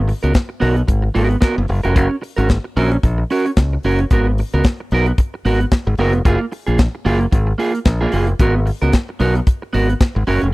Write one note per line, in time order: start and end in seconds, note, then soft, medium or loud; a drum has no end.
0.00 0.11 G#1 loud
0.08 muted clean electric guitar stroke medium
0.08 open hi-hat medium
0.23 0.32 C#2 medium
0.23 0.32 B3 medium
0.23 0.33 F#4 medium
0.23 0.34 A#4 medium
0.23 closed hi-hat soft
0.34 muted clean electric guitar stroke soft
0.34 kick loud
0.34 snare loud
0.34 closed hi-hat medium
0.49 muted clean electric guitar stroke soft
0.60 0.81 B1 loud
0.60 0.81 B3 medium
0.60 0.76 F#4 loud
0.60 0.75 A#4 medium
0.60 open hi-hat medium
0.76 muted clean electric guitar stroke soft
0.76 closed hi-hat soft
0.88 1.08 G#1 loud
0.88 muted clean electric guitar stroke soft
0.88 kick loud
0.88 closed hi-hat medium
1.02 muted clean electric guitar stroke soft
1.15 1.35 G#1 medium
1.15 1.36 B3 medium
1.15 1.29 F#4 medium
1.15 1.28 A#4 loud
1.15 open hi-hat medium
1.29 muted clean electric guitar stroke medium
1.29 closed hi-hat soft
1.41 1.61 B3 medium
1.41 1.56 F#4 medium
1.41 1.55 A#4 medium
1.41 kick loud
1.41 snare loud
1.41 closed hi-hat medium
1.56 1.66 F#1 loud
1.56 muted clean electric guitar stroke soft
1.68 1.80 F#1 medium
1.68 muted clean electric guitar stroke soft
1.68 open hi-hat medium
1.83 1.96 F1 medium
1.83 1.94 C#4 soft
1.83 1.95 F#4 medium
1.83 1.95 A#4 medium
1.83 closed hi-hat soft
1.95 2.07 F#1 loud
1.95 2.15 C#4 medium
1.95 2.10 F#4 medium
1.95 2.08 A#4 medium
1.95 kick loud
1.95 closed hi-hat medium
2.10 muted clean electric guitar stroke soft
2.22 muted clean electric guitar stroke soft
2.22 open hi-hat medium
2.37 2.57 G#1 medium
2.37 2.48 C#4 medium
2.37 2.49 F#4 medium
2.37 2.49 A#4 medium
2.37 closed hi-hat soft
2.49 kick loud
2.49 snare loud
2.49 closed hi-hat medium
2.64 muted clean electric guitar stroke medium
2.77 2.96 A#1 loud
2.77 2.96 C#4 medium
2.77 2.92 F#4 medium
2.77 2.90 A#4 medium
2.77 open hi-hat medium
2.91 muted clean electric guitar stroke soft
2.91 closed hi-hat soft
3.03 3.22 A#1 loud
3.03 muted clean electric guitar stroke soft
3.03 kick loud
3.03 closed hi-hat medium
3.18 muted clean electric guitar stroke soft
3.30 3.50 C#4 medium
3.30 3.46 F#4 medium
3.30 3.45 A#4 medium
3.30 open hi-hat medium
3.46 muted clean electric guitar stroke soft
3.46 closed hi-hat soft
3.57 3.76 C#2 medium
3.57 muted clean electric guitar stroke soft
3.57 kick loud
3.57 snare loud
3.57 closed hi-hat medium
3.73 muted clean electric guitar stroke medium
3.83 4.03 F#1 medium
3.83 4.04 C#4 medium
3.83 4.00 F#4 medium
3.83 3.99 A#4 medium
3.83 open hi-hat medium
3.99 muted clean electric guitar stroke soft
3.99 closed hi-hat soft
4.11 4.41 G#1 loud
4.11 4.31 B3 medium
4.11 4.27 F#4 medium
4.11 4.26 A#4 medium
4.11 kick loud
4.11 closed hi-hat medium
4.27 muted clean electric guitar stroke medium
4.38 muted clean electric guitar stroke soft
4.38 open hi-hat medium
4.53 4.62 C#2 medium
4.53 4.64 B3 soft
4.53 4.65 F#4 medium
4.53 4.65 A#4 medium
4.53 closed hi-hat soft
4.64 kick loud
4.64 snare loud
4.64 closed hi-hat medium
4.80 muted clean electric guitar stroke medium
4.91 5.11 B1 loud
4.91 5.11 B3 medium
4.91 5.07 F#4 medium
4.91 5.06 A#4 loud
4.91 open hi-hat medium
5.06 muted clean electric guitar stroke medium
5.06 closed hi-hat soft
5.18 muted clean electric guitar stroke soft
5.18 kick loud
5.18 closed hi-hat medium
5.34 muted clean electric guitar stroke soft
5.45 5.64 G#1 medium
5.45 5.64 B3 medium
5.45 5.60 F#4 loud
5.45 5.59 A#4 medium
5.45 open hi-hat medium
5.60 muted clean electric guitar stroke soft
5.60 closed hi-hat soft
5.71 muted clean electric guitar stroke soft
5.71 kick loud
5.71 snare loud
5.71 closed hi-hat medium
5.87 5.95 G#1 loud
5.87 muted clean electric guitar stroke medium
5.98 6.14 F#1 loud
5.98 6.18 B3 loud
5.98 6.14 F#4 medium
5.98 6.13 A#4 loud
5.98 open hi-hat medium
6.13 6.22 F1 medium
6.13 muted clean electric guitar stroke soft
6.13 closed hi-hat soft
6.25 6.36 F#1 loud
6.25 6.45 A#3 medium
6.25 6.40 F4 medium
6.25 6.39 G#4 medium
6.25 kick loud
6.25 closed hi-hat medium
6.40 muted clean electric guitar stroke soft
6.52 muted clean electric guitar stroke soft
6.52 open hi-hat medium
6.67 6.87 A#1 medium
6.67 6.78 A#3 soft
6.67 6.79 F4 medium
6.67 6.79 G#4 medium
6.67 closed hi-hat soft
6.78 muted clean electric guitar stroke soft
6.78 kick loud
6.78 snare loud
6.78 closed hi-hat medium
6.95 muted clean electric guitar stroke soft
7.05 7.25 F#1 loud
7.05 7.25 A#3 medium
7.05 7.20 F4 medium
7.05 7.18 G#4 loud
7.05 open hi-hat medium
7.20 muted clean electric guitar stroke soft
7.20 closed hi-hat soft
7.32 7.52 G#1 loud
7.32 muted clean electric guitar stroke soft
7.32 kick loud
7.32 closed hi-hat medium
7.47 muted clean electric guitar stroke medium
7.58 7.78 A#3 medium
7.58 7.74 F4 medium
7.58 7.72 G#4 medium
7.58 open hi-hat medium
7.74 muted clean electric guitar stroke soft
7.74 closed hi-hat soft
7.85 8.05 A#1 loud
7.85 muted clean electric guitar stroke soft
7.85 kick loud
7.85 snare loud
7.85 closed hi-hat medium
8.01 8.11 A#3 medium
8.01 8.13 F4 medium
8.01 8.13 G#4 medium
8.12 8.32 F#1 medium
8.12 8.29 A#3 medium
8.12 8.28 F4 medium
8.12 8.27 G#4 medium
8.12 open hi-hat medium
8.27 muted clean electric guitar stroke soft
8.27 closed hi-hat soft
8.39 8.69 G#1 loud
8.39 8.59 B3 medium
8.39 8.55 F#4 medium
8.39 8.54 A#4 medium
8.39 kick loud
8.39 closed hi-hat medium
8.55 muted clean electric guitar stroke soft
8.66 muted clean electric guitar stroke soft
8.66 open hi-hat medium
8.82 8.90 C#2 medium
8.82 8.92 B3 medium
8.82 8.93 F#4 medium
8.82 8.93 A#4 medium
8.82 closed hi-hat medium
8.93 muted clean electric guitar stroke soft
8.93 kick loud
8.93 snare loud
8.93 closed hi-hat medium
9.09 muted clean electric guitar stroke soft
9.20 9.39 B1 loud
9.20 9.39 B3 medium
9.20 9.36 F#4 medium
9.20 9.34 A#4 loud
9.20 open hi-hat medium
9.35 muted clean electric guitar stroke soft
9.35 closed hi-hat soft
9.47 muted clean electric guitar stroke soft
9.47 kick loud
9.47 closed hi-hat medium
9.62 muted clean electric guitar stroke medium
9.73 9.93 G#1 medium
9.73 9.93 B3 medium
9.73 9.89 F#4 medium
9.73 9.88 A#4 medium
9.73 open hi-hat medium
9.89 muted clean electric guitar stroke soft
9.89 closed hi-hat medium
10.01 muted clean electric guitar stroke soft
10.01 kick loud
10.01 snare loud
10.01 closed hi-hat medium
10.15 10.24 G#1 loud
10.15 muted clean electric guitar stroke soft
10.27 10.38 F#1 medium
10.27 10.47 C#4 medium
10.27 10.42 F#4 medium
10.27 10.41 A#4 medium
10.27 open hi-hat medium
10.42 10.51 F1 medium
10.42 muted clean electric guitar stroke soft
10.42 closed hi-hat soft